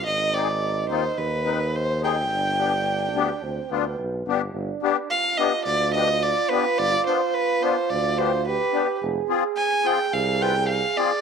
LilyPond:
<<
  \new Staff \with { instrumentName = "Violin" } { \time 4/4 \tempo 4 = 107 ees''8 d''4 c''8 b'4 c''8 g''8~ | g''2. r4 | r4 f''8 ees''8 d''8 ees''8 d''8 b'8 | d''8 c''8 b'8 c''8 d''8 c''8 b'4 |
r4 aes''8 g''8 f''8 g''8 f''8 d''8 | }
  \new Staff \with { instrumentName = "Trombone" } { \time 4/4 ees'2.~ ees'8 r8 | d'2 c'8 b4 r8 | d'4 f'2.~ | f'2. g'4 |
aes'1 | }
  \new Staff \with { instrumentName = "Accordion" } { \time 4/4 r8 <c' ees' aes'>16 r8. <c' ees' f'>16 r8. <c' ees' b'>16 r8. <c' ees' aes'>16 r16 | r8 <b d' g'>16 r8. <b d' g'>16 r8. <b d' f'>16 r8. <b d' g'>16 r16 | r8 <b d' g'>16 r8. <b d' g'>16 r8. <b d' g'>16 r8. <b d' g'>16 r16 | r8 <b d' f'>16 r8. <b d' f'>16 r8. <b d' g'>16 r8. <b d' g'>16 r16 |
r8 <c' f' aes'>16 r8. <c' f' aes'>16 r8. <c' f' b'>16 r8. <c' f' aes'>16 r16 | }
  \new Staff \with { instrumentName = "Tuba" } { \clef bass \time 4/4 aes,,4. ees,8 ees,2 | g,,4. d,8 d,8 d,8 b,,8 g,,8 | g,,8 r4. d,2 | g,,8 r4. d,2 |
f,,8 r4. c,2 | }
>>